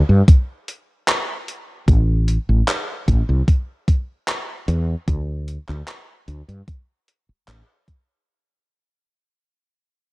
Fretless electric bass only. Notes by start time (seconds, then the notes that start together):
0.09 G2
1.88 A1
2.49 A1
3.08 A1
3.29 C2
4.68 E2
5.08 D2
5.69 D2
6.28 D2
6.48 G2
7.29 muted fretless electric bass stroke
7.48 A1